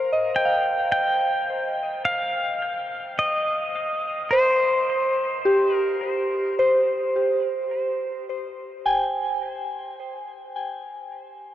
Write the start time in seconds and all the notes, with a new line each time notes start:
Already playing: A#4 C5 F5
0.12 D#5
0.36 G5
0.45 F5
0.92 G5
2.05 F5
3.19 D#5
4.31 C5
5.45 G4
5.75 A#4
6.59 C5
8.85 G5 G#5